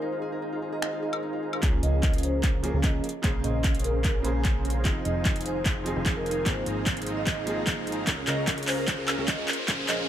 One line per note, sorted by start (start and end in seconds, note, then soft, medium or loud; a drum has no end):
0.00 1.61 D#4 medium
0.00 0.42 D#4 medium
0.00 0.12 F4 medium
0.00 0.21 G#4 medium
0.00 1.61 G#4 medium
0.00 0.32 A#4 medium
0.00 1.90 C5 medium
0.00 0.11 C5 medium
0.00 1.61 C5 medium
0.00 1.61 F5 medium
0.00 1.61 A#5 medium
0.12 0.52 F4 medium
0.22 0.62 G#4 loud
0.32 1.12 A#4 medium
0.42 0.82 D#4 medium
0.52 0.92 F4 medium
0.62 0.72 G#4 medium
0.73 1.02 G#4 medium
0.73 1.13 D#5 medium
0.82 1.22 D#4 medium
0.82 finger snap medium
0.93 1.33 F4 medium
1.02 1.42 G#4 medium
1.13 1.53 A#4 medium
1.13 high woodblock medium
1.23 3.93 D#4 medium
1.33 3.85 F4 medium
1.43 3.70 G#4 medium
1.53 3.65 A#4 medium
1.53 high woodblock medium
1.61 1.81 C#2 medium
1.61 2.60 F3 medium
1.61 2.61 A#3 medium
1.61 1.81 C#4 medium
1.61 2.62 C#4 medium
1.61 kick medium
1.61 clap soft
1.61 closed hi-hat medium
1.61 riser medium
1.65 2.62 G#4 medium
1.83 2.72 C#2 loud
1.83 2.71 C#4 medium
1.83 2.71 G#4 medium
1.83 2.71 A#4 medium
1.83 1.90 D#5 medium
1.83 2.71 F5 medium
1.83 2.71 A#5 medium
1.83 closed hi-hat medium
1.93 2.00 D#5 medium
2.03 kick medium
2.03 clap soft
2.03 closed hi-hat medium
2.14 closed hi-hat soft
2.18 closed hi-hat medium
2.23 2.33 C5 medium
2.23 closed hi-hat medium
2.43 kick medium
2.43 clap soft
2.43 closed hi-hat medium
2.63 3.02 F3 medium
2.63 3.03 A#3 medium
2.63 3.03 C#4 medium
2.63 3.03 G#4 medium
2.63 closed hi-hat medium
2.74 3.01 C#2 loud
2.74 3.03 C#4 medium
2.74 3.03 G#4 medium
2.74 3.03 A#4 medium
2.74 3.03 F5 medium
2.74 3.03 A#5 loud
2.84 2.93 D#5 medium
2.84 kick medium
2.84 clap soft
2.84 closed hi-hat medium
3.04 closed hi-hat soft
3.09 closed hi-hat medium
3.22 3.42 A#1 medium
3.22 4.21 C#3 medium
3.22 4.22 A#3 medium
3.22 3.42 C#4 medium
3.22 3.42 G#4 medium
3.22 4.23 G#4 medium
3.22 3.42 C5 medium
3.22 4.23 C5 medium
3.22 3.42 F5 medium
3.22 3.42 A#5 medium
3.22 kick loud
3.22 clap medium
3.22 closed hi-hat medium
3.44 4.87 A#1 loud
3.44 4.83 C#4 medium
3.44 4.83 G#4 medium
3.44 4.83 C5 medium
3.44 3.54 D#5 medium
3.44 4.83 F5 medium
3.44 4.83 A#5 loud
3.44 closed hi-hat medium
3.64 kick loud
3.64 clap medium
3.64 closed hi-hat medium
3.75 closed hi-hat soft
3.79 closed hi-hat medium
3.84 4.25 A#4 medium
3.84 closed hi-hat medium
4.04 kick medium
4.04 clap medium
4.04 closed hi-hat medium
4.23 4.82 C#3 medium
4.23 4.82 A#3 medium
4.23 4.83 C5 medium
4.23 closed hi-hat medium
4.27 4.84 G#4 medium
4.45 kick loud
4.45 clap medium
4.45 closed hi-hat medium
4.65 closed hi-hat soft
4.70 closed hi-hat medium
4.83 5.03 F1 loud
4.83 5.82 F3 medium
4.83 5.83 C4 medium
4.83 5.03 D#4 medium
4.83 5.84 D#4 medium
4.83 5.03 G#4 medium
4.83 5.03 C5 medium
4.83 5.03 F5 medium
4.83 5.03 G#5 medium
4.83 kick loud
4.83 clap medium
4.83 closed hi-hat medium
4.87 5.84 G#4 medium
5.05 5.94 F1 loud
5.05 5.94 D#4 medium
5.05 5.94 G#4 medium
5.05 5.94 C5 medium
5.05 5.12 D#5 medium
5.05 5.94 F5 medium
5.05 5.94 G#5 medium
5.05 closed hi-hat medium
5.16 5.22 D#5 medium
5.25 kick medium
5.25 clap medium
5.25 closed hi-hat medium
5.36 closed hi-hat soft
5.41 closed hi-hat medium
5.46 5.55 C5 medium
5.46 closed hi-hat medium
5.66 kick medium
5.66 clap medium
5.66 closed hi-hat medium
5.84 6.43 F3 medium
5.84 6.43 C4 medium
5.84 6.44 D#4 medium
5.84 6.45 G#4 medium
5.84 closed hi-hat medium
5.96 6.44 F1 loud
5.96 6.44 D#4 loud
5.96 6.44 G#4 medium
5.96 6.44 C5 medium
5.96 6.44 F5 medium
5.96 6.44 G#5 loud
6.06 kick medium
6.06 clap medium
6.06 closed hi-hat medium
6.16 6.23 A#4 medium
6.26 6.33 A#4 medium
6.26 closed hi-hat soft
6.31 closed hi-hat medium
6.44 6.64 G#1 medium
6.44 7.43 F3 medium
6.44 7.44 A#3 medium
6.44 7.45 C4 medium
6.44 7.46 G#4 medium
6.44 kick loud
6.44 clap medium
6.44 closed hi-hat medium
6.66 8.05 G#1 loud
6.66 8.05 D#4 medium
6.66 8.05 G#4 medium
6.66 8.05 C5 medium
6.66 8.05 F5 medium
6.66 8.05 A#5 medium
6.66 closed hi-hat medium
6.86 kick loud
6.86 clap medium
6.86 closed hi-hat medium
6.97 closed hi-hat soft
7.02 closed hi-hat medium
7.07 closed hi-hat medium
7.17 7.57 D#5 medium
7.27 kick medium
7.27 clap medium
7.27 closed hi-hat medium
7.45 8.04 F3 medium
7.45 8.04 A#3 medium
7.45 8.05 C4 medium
7.45 closed hi-hat medium
7.49 8.06 G#4 medium
7.67 kick loud
7.67 clap medium
7.67 closed hi-hat medium
7.87 closed hi-hat soft
7.92 closed hi-hat medium
8.07 8.25 C#2 loud
8.07 8.47 F4 loud
8.07 kick medium
8.07 clap medium
8.07 closed hi-hat medium
8.17 8.57 G#4 medium
8.27 9.16 C#2 loud
8.27 9.16 C#4 medium
8.27 9.16 G#4 medium
8.27 8.67 A#4 loud
8.27 9.16 A#4 medium
8.27 8.34 D#5 medium
8.27 9.16 F5 medium
8.27 9.16 A#5 medium
8.27 clap medium
8.27 closed hi-hat medium
8.38 9.18 C#5 medium
8.38 8.44 D#5 medium
8.47 8.87 F4 medium
8.47 kick medium
8.47 clap medium
8.47 closed hi-hat medium
8.58 8.98 G#4 medium
8.58 closed hi-hat soft
8.63 closed hi-hat medium
8.68 8.78 A#4 medium
8.68 8.77 C5 medium
8.68 clap medium
8.68 open hi-hat medium
8.78 9.08 A#4 medium
8.88 9.28 F4 loud
8.88 kick loud
8.88 clap medium
8.88 closed hi-hat medium
8.98 9.38 G#4 loud
9.08 9.48 A#4 loud
9.08 clap medium
9.08 closed hi-hat medium
9.08 high woodblock medium
9.18 9.45 C#2 medium
9.18 9.47 C#4 loud
9.18 9.47 G#4 medium
9.18 9.47 A#4 medium
9.18 9.65 C#5 medium
9.18 9.47 F5 medium
9.18 9.47 A#5 loud
9.28 9.68 F4 loud
9.28 9.38 D#5 medium
9.28 kick loud
9.28 clap medium
9.28 closed hi-hat medium
9.38 9.78 G#4 medium
9.48 9.88 A#4 medium
9.48 clap medium
9.48 closed hi-hat soft
9.53 closed hi-hat medium
9.59 9.98 C5 medium
9.68 9.87 A#1 medium
9.68 9.86 C#4 medium
9.68 10.08 F4 loud
9.68 9.86 G#4 medium
9.68 9.86 C5 medium
9.68 9.86 F5 medium
9.68 9.86 A#5 medium
9.68 kick medium
9.68 clap medium
9.68 closed hi-hat medium
9.79 10.09 G#4 medium
9.88 10.09 A#1 medium
9.88 10.09 C#4 medium
9.88 10.09 G#4 medium
9.88 10.09 A#4 loud
9.88 10.09 C5 medium
9.88 9.98 D#5 loud
9.88 10.09 F5 medium
9.88 10.09 A#5 loud
9.88 clap medium
9.88 closed hi-hat medium
9.99 10.09 C5 medium